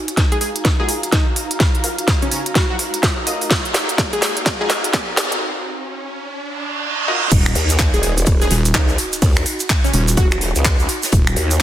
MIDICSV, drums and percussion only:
0, 0, Header, 1, 2, 480
1, 0, Start_track
1, 0, Key_signature, -6, "minor"
1, 0, Tempo, 476190
1, 1615, Time_signature, 4, 2, 24, 8
1, 11716, End_track
2, 0, Start_track
2, 0, Title_t, "Drums"
2, 82, Note_on_c, 9, 42, 52
2, 174, Note_off_c, 9, 42, 0
2, 174, Note_on_c, 9, 36, 100
2, 174, Note_on_c, 9, 38, 45
2, 174, Note_on_c, 9, 42, 60
2, 275, Note_off_c, 9, 36, 0
2, 275, Note_off_c, 9, 38, 0
2, 275, Note_off_c, 9, 42, 0
2, 321, Note_on_c, 9, 42, 38
2, 413, Note_on_c, 9, 46, 88
2, 422, Note_off_c, 9, 42, 0
2, 514, Note_off_c, 9, 46, 0
2, 561, Note_on_c, 9, 42, 50
2, 653, Note_off_c, 9, 42, 0
2, 653, Note_on_c, 9, 38, 48
2, 653, Note_on_c, 9, 42, 66
2, 654, Note_on_c, 9, 36, 108
2, 754, Note_off_c, 9, 38, 0
2, 754, Note_off_c, 9, 42, 0
2, 755, Note_off_c, 9, 36, 0
2, 893, Note_on_c, 9, 46, 99
2, 994, Note_off_c, 9, 46, 0
2, 1042, Note_on_c, 9, 42, 53
2, 1133, Note_off_c, 9, 42, 0
2, 1133, Note_on_c, 9, 38, 53
2, 1133, Note_on_c, 9, 42, 65
2, 1134, Note_on_c, 9, 36, 99
2, 1234, Note_off_c, 9, 36, 0
2, 1234, Note_off_c, 9, 38, 0
2, 1234, Note_off_c, 9, 42, 0
2, 1373, Note_on_c, 9, 46, 102
2, 1474, Note_off_c, 9, 46, 0
2, 1520, Note_on_c, 9, 42, 54
2, 1612, Note_off_c, 9, 42, 0
2, 1612, Note_on_c, 9, 38, 55
2, 1612, Note_on_c, 9, 42, 59
2, 1614, Note_on_c, 9, 36, 120
2, 1713, Note_off_c, 9, 38, 0
2, 1713, Note_off_c, 9, 42, 0
2, 1715, Note_off_c, 9, 36, 0
2, 1761, Note_on_c, 9, 42, 35
2, 1852, Note_on_c, 9, 46, 107
2, 1862, Note_off_c, 9, 42, 0
2, 1953, Note_off_c, 9, 46, 0
2, 2001, Note_on_c, 9, 42, 48
2, 2093, Note_off_c, 9, 42, 0
2, 2093, Note_on_c, 9, 38, 57
2, 2093, Note_on_c, 9, 42, 61
2, 2094, Note_on_c, 9, 36, 105
2, 2194, Note_off_c, 9, 38, 0
2, 2194, Note_off_c, 9, 42, 0
2, 2195, Note_off_c, 9, 36, 0
2, 2241, Note_on_c, 9, 42, 37
2, 2333, Note_on_c, 9, 46, 95
2, 2342, Note_off_c, 9, 42, 0
2, 2434, Note_off_c, 9, 46, 0
2, 2481, Note_on_c, 9, 42, 52
2, 2573, Note_off_c, 9, 42, 0
2, 2573, Note_on_c, 9, 38, 61
2, 2573, Note_on_c, 9, 42, 63
2, 2574, Note_on_c, 9, 36, 116
2, 2674, Note_off_c, 9, 36, 0
2, 2674, Note_off_c, 9, 38, 0
2, 2674, Note_off_c, 9, 42, 0
2, 2813, Note_on_c, 9, 46, 101
2, 2914, Note_off_c, 9, 46, 0
2, 2962, Note_on_c, 9, 42, 53
2, 3054, Note_off_c, 9, 42, 0
2, 3054, Note_on_c, 9, 36, 105
2, 3054, Note_on_c, 9, 38, 66
2, 3054, Note_on_c, 9, 42, 64
2, 3154, Note_off_c, 9, 36, 0
2, 3155, Note_off_c, 9, 38, 0
2, 3155, Note_off_c, 9, 42, 0
2, 3294, Note_on_c, 9, 46, 110
2, 3395, Note_off_c, 9, 46, 0
2, 3442, Note_on_c, 9, 46, 62
2, 3534, Note_on_c, 9, 36, 116
2, 3534, Note_on_c, 9, 38, 71
2, 3534, Note_on_c, 9, 42, 60
2, 3543, Note_off_c, 9, 46, 0
2, 3634, Note_off_c, 9, 38, 0
2, 3634, Note_off_c, 9, 42, 0
2, 3635, Note_off_c, 9, 36, 0
2, 3682, Note_on_c, 9, 42, 35
2, 3774, Note_on_c, 9, 38, 73
2, 3774, Note_on_c, 9, 46, 111
2, 3782, Note_off_c, 9, 42, 0
2, 3875, Note_off_c, 9, 38, 0
2, 3875, Note_off_c, 9, 46, 0
2, 3922, Note_on_c, 9, 42, 50
2, 4014, Note_off_c, 9, 42, 0
2, 4014, Note_on_c, 9, 36, 114
2, 4014, Note_on_c, 9, 38, 75
2, 4014, Note_on_c, 9, 42, 60
2, 4115, Note_off_c, 9, 36, 0
2, 4115, Note_off_c, 9, 38, 0
2, 4115, Note_off_c, 9, 42, 0
2, 4162, Note_on_c, 9, 42, 35
2, 4254, Note_on_c, 9, 38, 73
2, 4254, Note_on_c, 9, 46, 101
2, 4263, Note_off_c, 9, 42, 0
2, 4355, Note_off_c, 9, 38, 0
2, 4355, Note_off_c, 9, 46, 0
2, 4402, Note_on_c, 9, 42, 49
2, 4494, Note_on_c, 9, 36, 114
2, 4495, Note_off_c, 9, 42, 0
2, 4495, Note_on_c, 9, 38, 78
2, 4495, Note_on_c, 9, 42, 62
2, 4595, Note_off_c, 9, 36, 0
2, 4595, Note_off_c, 9, 38, 0
2, 4595, Note_off_c, 9, 42, 0
2, 4734, Note_on_c, 9, 38, 84
2, 4734, Note_on_c, 9, 46, 107
2, 4835, Note_off_c, 9, 38, 0
2, 4835, Note_off_c, 9, 46, 0
2, 4882, Note_on_c, 9, 42, 53
2, 4974, Note_off_c, 9, 42, 0
2, 4974, Note_on_c, 9, 36, 106
2, 4974, Note_on_c, 9, 38, 87
2, 4974, Note_on_c, 9, 42, 61
2, 5075, Note_off_c, 9, 36, 0
2, 5075, Note_off_c, 9, 38, 0
2, 5075, Note_off_c, 9, 42, 0
2, 5214, Note_on_c, 9, 38, 88
2, 5214, Note_on_c, 9, 46, 113
2, 5315, Note_off_c, 9, 38, 0
2, 5315, Note_off_c, 9, 46, 0
2, 5362, Note_on_c, 9, 42, 53
2, 5463, Note_off_c, 9, 42, 0
2, 7372, Note_on_c, 9, 42, 84
2, 7373, Note_on_c, 9, 82, 65
2, 7374, Note_off_c, 9, 42, 0
2, 7374, Note_on_c, 9, 42, 64
2, 7374, Note_on_c, 9, 49, 100
2, 7374, Note_on_c, 9, 51, 62
2, 7375, Note_on_c, 9, 36, 117
2, 7474, Note_off_c, 9, 82, 0
2, 7475, Note_off_c, 9, 42, 0
2, 7475, Note_off_c, 9, 49, 0
2, 7475, Note_off_c, 9, 51, 0
2, 7476, Note_off_c, 9, 36, 0
2, 7522, Note_on_c, 9, 26, 74
2, 7523, Note_on_c, 9, 82, 36
2, 7614, Note_on_c, 9, 46, 110
2, 7615, Note_on_c, 9, 42, 65
2, 7623, Note_off_c, 9, 26, 0
2, 7623, Note_off_c, 9, 82, 0
2, 7715, Note_off_c, 9, 46, 0
2, 7716, Note_off_c, 9, 42, 0
2, 7757, Note_on_c, 9, 82, 85
2, 7762, Note_on_c, 9, 42, 54
2, 7851, Note_off_c, 9, 82, 0
2, 7851, Note_on_c, 9, 82, 69
2, 7854, Note_off_c, 9, 42, 0
2, 7854, Note_on_c, 9, 42, 70
2, 7854, Note_on_c, 9, 51, 66
2, 7855, Note_on_c, 9, 36, 105
2, 7855, Note_on_c, 9, 38, 115
2, 7858, Note_on_c, 9, 39, 115
2, 7952, Note_off_c, 9, 82, 0
2, 7954, Note_off_c, 9, 42, 0
2, 7954, Note_off_c, 9, 51, 0
2, 7955, Note_off_c, 9, 36, 0
2, 7956, Note_off_c, 9, 38, 0
2, 7958, Note_off_c, 9, 39, 0
2, 8001, Note_on_c, 9, 42, 40
2, 8004, Note_on_c, 9, 82, 41
2, 8094, Note_on_c, 9, 46, 103
2, 8096, Note_off_c, 9, 42, 0
2, 8096, Note_on_c, 9, 42, 71
2, 8105, Note_off_c, 9, 82, 0
2, 8195, Note_off_c, 9, 46, 0
2, 8196, Note_off_c, 9, 42, 0
2, 8241, Note_on_c, 9, 82, 73
2, 8242, Note_on_c, 9, 42, 56
2, 8325, Note_off_c, 9, 82, 0
2, 8325, Note_on_c, 9, 82, 65
2, 8327, Note_off_c, 9, 42, 0
2, 8327, Note_on_c, 9, 42, 88
2, 8334, Note_off_c, 9, 42, 0
2, 8334, Note_on_c, 9, 42, 69
2, 8334, Note_on_c, 9, 51, 66
2, 8335, Note_on_c, 9, 36, 111
2, 8426, Note_off_c, 9, 82, 0
2, 8435, Note_off_c, 9, 42, 0
2, 8435, Note_off_c, 9, 51, 0
2, 8436, Note_off_c, 9, 36, 0
2, 8483, Note_on_c, 9, 42, 40
2, 8485, Note_on_c, 9, 38, 39
2, 8485, Note_on_c, 9, 82, 43
2, 8569, Note_off_c, 9, 42, 0
2, 8569, Note_on_c, 9, 42, 74
2, 8571, Note_off_c, 9, 38, 0
2, 8571, Note_on_c, 9, 38, 53
2, 8575, Note_on_c, 9, 46, 101
2, 8586, Note_off_c, 9, 82, 0
2, 8670, Note_off_c, 9, 42, 0
2, 8672, Note_off_c, 9, 38, 0
2, 8676, Note_off_c, 9, 46, 0
2, 8723, Note_on_c, 9, 42, 55
2, 8723, Note_on_c, 9, 82, 81
2, 8812, Note_off_c, 9, 82, 0
2, 8812, Note_on_c, 9, 82, 65
2, 8815, Note_off_c, 9, 42, 0
2, 8815, Note_on_c, 9, 36, 106
2, 8815, Note_on_c, 9, 38, 118
2, 8815, Note_on_c, 9, 42, 66
2, 8815, Note_on_c, 9, 51, 69
2, 8819, Note_on_c, 9, 39, 124
2, 8913, Note_off_c, 9, 82, 0
2, 8916, Note_off_c, 9, 36, 0
2, 8916, Note_off_c, 9, 38, 0
2, 8916, Note_off_c, 9, 42, 0
2, 8916, Note_off_c, 9, 51, 0
2, 8920, Note_off_c, 9, 39, 0
2, 8955, Note_on_c, 9, 82, 39
2, 8959, Note_on_c, 9, 38, 38
2, 9055, Note_on_c, 9, 46, 106
2, 9056, Note_off_c, 9, 82, 0
2, 9060, Note_off_c, 9, 38, 0
2, 9060, Note_on_c, 9, 42, 75
2, 9156, Note_off_c, 9, 46, 0
2, 9161, Note_off_c, 9, 42, 0
2, 9202, Note_on_c, 9, 42, 54
2, 9202, Note_on_c, 9, 82, 71
2, 9294, Note_off_c, 9, 42, 0
2, 9294, Note_off_c, 9, 82, 0
2, 9294, Note_on_c, 9, 42, 66
2, 9294, Note_on_c, 9, 51, 63
2, 9294, Note_on_c, 9, 82, 66
2, 9295, Note_on_c, 9, 36, 127
2, 9296, Note_on_c, 9, 46, 87
2, 9395, Note_off_c, 9, 42, 0
2, 9395, Note_off_c, 9, 51, 0
2, 9395, Note_off_c, 9, 82, 0
2, 9396, Note_off_c, 9, 36, 0
2, 9396, Note_off_c, 9, 46, 0
2, 9438, Note_on_c, 9, 82, 40
2, 9442, Note_on_c, 9, 26, 76
2, 9534, Note_on_c, 9, 42, 69
2, 9535, Note_on_c, 9, 46, 119
2, 9539, Note_off_c, 9, 82, 0
2, 9543, Note_off_c, 9, 26, 0
2, 9635, Note_off_c, 9, 42, 0
2, 9635, Note_off_c, 9, 46, 0
2, 9672, Note_on_c, 9, 82, 80
2, 9682, Note_on_c, 9, 42, 53
2, 9772, Note_off_c, 9, 82, 0
2, 9772, Note_on_c, 9, 82, 63
2, 9775, Note_off_c, 9, 42, 0
2, 9775, Note_on_c, 9, 36, 113
2, 9775, Note_on_c, 9, 38, 115
2, 9775, Note_on_c, 9, 42, 63
2, 9775, Note_on_c, 9, 51, 62
2, 9779, Note_on_c, 9, 39, 123
2, 9872, Note_off_c, 9, 82, 0
2, 9875, Note_off_c, 9, 36, 0
2, 9875, Note_off_c, 9, 42, 0
2, 9875, Note_off_c, 9, 51, 0
2, 9876, Note_off_c, 9, 38, 0
2, 9880, Note_off_c, 9, 39, 0
2, 9923, Note_on_c, 9, 42, 38
2, 9930, Note_on_c, 9, 82, 44
2, 10013, Note_off_c, 9, 42, 0
2, 10013, Note_on_c, 9, 42, 66
2, 10015, Note_on_c, 9, 46, 107
2, 10031, Note_off_c, 9, 82, 0
2, 10113, Note_off_c, 9, 42, 0
2, 10115, Note_off_c, 9, 46, 0
2, 10162, Note_on_c, 9, 82, 88
2, 10163, Note_on_c, 9, 42, 54
2, 10250, Note_off_c, 9, 42, 0
2, 10250, Note_on_c, 9, 42, 78
2, 10253, Note_off_c, 9, 82, 0
2, 10253, Note_on_c, 9, 82, 74
2, 10255, Note_off_c, 9, 42, 0
2, 10255, Note_on_c, 9, 36, 118
2, 10255, Note_on_c, 9, 42, 68
2, 10255, Note_on_c, 9, 51, 66
2, 10354, Note_off_c, 9, 82, 0
2, 10356, Note_off_c, 9, 36, 0
2, 10356, Note_off_c, 9, 42, 0
2, 10356, Note_off_c, 9, 51, 0
2, 10396, Note_on_c, 9, 82, 38
2, 10403, Note_on_c, 9, 26, 80
2, 10403, Note_on_c, 9, 42, 39
2, 10495, Note_on_c, 9, 38, 53
2, 10495, Note_on_c, 9, 46, 105
2, 10496, Note_off_c, 9, 42, 0
2, 10496, Note_on_c, 9, 42, 73
2, 10497, Note_off_c, 9, 82, 0
2, 10503, Note_off_c, 9, 26, 0
2, 10596, Note_off_c, 9, 38, 0
2, 10596, Note_off_c, 9, 46, 0
2, 10597, Note_off_c, 9, 42, 0
2, 10639, Note_on_c, 9, 82, 77
2, 10643, Note_on_c, 9, 42, 54
2, 10730, Note_off_c, 9, 42, 0
2, 10730, Note_on_c, 9, 42, 98
2, 10733, Note_on_c, 9, 38, 106
2, 10735, Note_off_c, 9, 42, 0
2, 10735, Note_off_c, 9, 82, 0
2, 10735, Note_on_c, 9, 36, 111
2, 10735, Note_on_c, 9, 42, 69
2, 10735, Note_on_c, 9, 51, 68
2, 10735, Note_on_c, 9, 82, 73
2, 10739, Note_on_c, 9, 39, 124
2, 10834, Note_off_c, 9, 38, 0
2, 10835, Note_off_c, 9, 36, 0
2, 10836, Note_off_c, 9, 42, 0
2, 10836, Note_off_c, 9, 51, 0
2, 10836, Note_off_c, 9, 82, 0
2, 10840, Note_off_c, 9, 39, 0
2, 10880, Note_on_c, 9, 82, 43
2, 10975, Note_on_c, 9, 46, 112
2, 10976, Note_on_c, 9, 42, 67
2, 10980, Note_off_c, 9, 82, 0
2, 11076, Note_off_c, 9, 46, 0
2, 11077, Note_off_c, 9, 42, 0
2, 11118, Note_on_c, 9, 82, 88
2, 11122, Note_on_c, 9, 46, 64
2, 11123, Note_on_c, 9, 38, 57
2, 11208, Note_on_c, 9, 42, 99
2, 11215, Note_off_c, 9, 42, 0
2, 11215, Note_on_c, 9, 36, 127
2, 11215, Note_on_c, 9, 42, 65
2, 11215, Note_on_c, 9, 51, 64
2, 11219, Note_off_c, 9, 82, 0
2, 11223, Note_off_c, 9, 46, 0
2, 11224, Note_off_c, 9, 38, 0
2, 11225, Note_on_c, 9, 82, 69
2, 11316, Note_off_c, 9, 36, 0
2, 11316, Note_off_c, 9, 42, 0
2, 11316, Note_off_c, 9, 51, 0
2, 11326, Note_off_c, 9, 82, 0
2, 11363, Note_on_c, 9, 26, 81
2, 11365, Note_on_c, 9, 82, 38
2, 11454, Note_on_c, 9, 42, 70
2, 11455, Note_on_c, 9, 46, 119
2, 11463, Note_off_c, 9, 26, 0
2, 11466, Note_off_c, 9, 82, 0
2, 11554, Note_off_c, 9, 42, 0
2, 11556, Note_off_c, 9, 46, 0
2, 11601, Note_on_c, 9, 82, 81
2, 11602, Note_on_c, 9, 42, 54
2, 11701, Note_off_c, 9, 82, 0
2, 11703, Note_off_c, 9, 42, 0
2, 11716, End_track
0, 0, End_of_file